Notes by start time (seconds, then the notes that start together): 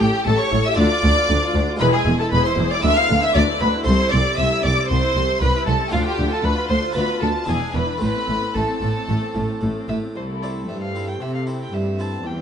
Already playing: A3 C#4 G4
0.00 A1 A2 G4 A4 G5
0.15 G4
0.25 A1 A2 A4 A5
0.37 G4 C#5 C#6
0.51 A1 A2 A4
0.64 G4 E5 E6
0.72 A3 D4 F4
0.76 D2 D4 D5 D6
0.92 F4
1.03 D2 D4
1.18 F4
1.29 D2 D4
1.44 F4
1.54 D2 D4
1.70 F4
1.76 E2 G#3 B3 E4 B5
1.80 E1 E2 G#4 B4
1.92 E4 G#4 G#5
2.06 E1 E2 G#4
2.18 E4 A4 A5
2.31 E1 E2 G#4 B4 B5
2.44 E4 C5 C6
2.58 E1 E2 G#4
2.70 E4 D5 D6
2.79 G#3 B3 E4 E6
2.83 D2 D4 E5
2.94 E4 F5 F6
3.10 D2 D4
3.22 E4 E5 E6
3.33 D2 D4 D5 D6
3.50 E4
3.59 D2 D4 B4 B5
3.76 E4
3.83 C2 A3 E4 C5 C6
3.88 C2 C4
4.00 E4
4.11 C2 C4 D5 D6
4.26 E4
4.37 C2 C4 E5 E6
4.51 E4
4.63 C2 C4 D5 D6
4.76 E4
4.88 C2 C4 C5 C6
5.02 E4
5.15 C2 C4
5.29 E4
5.40 C2 C4 B4 B5
5.55 E4
5.66 C2 C4 A4 A5
5.81 E4
5.89 A3 D4 F4 F5
5.93 D2 D4
6.04 F4 G4 G5
6.18 D2 D4
6.31 F4 A4 A5
6.43 D2 D4 B4 B5
6.58 F4
6.69 D2 D4 C5 C6
6.83 F4
6.91 B3 D4 F4 B4
6.95 D2 B4 B5
7.08 F4
7.20 D2 D4 A4 A5
7.34 F4
7.44 B3 D4 E4 G#4
7.48 E1 E2 G#4 G#5
7.61 D4
7.74 E1 E2 E4 B4 B5
7.89 D4
7.97 A3 C4 E4 B4
8.02 A1 A2 A3 B4 B5
8.15 C4
8.28 A1 A2 A3
8.42 C4
8.54 A1 A2 A3 A4 A5
8.70 C4
8.82 A1 A2 A3
8.96 C4
9.08 A1 A2 A3
9.24 C4
9.35 A1 A2 A3
9.50 C4
9.61 A1 A2 A3
9.78 C4
9.89 A1 A2 A3 E5
10.04 C4
10.15 C2 A3 E4 A4 C5
10.42 C4 E4 D5
10.68 G2 C4 E5
10.81 F5
10.95 C4 E4
11.08 G5
11.20 C3 G4 E5
11.35 F5
11.47 C4 E4
11.62 G5
11.73 G2 C4 C5 E5
11.99 C4 E4 A5
12.24 E2 G3 C5 G5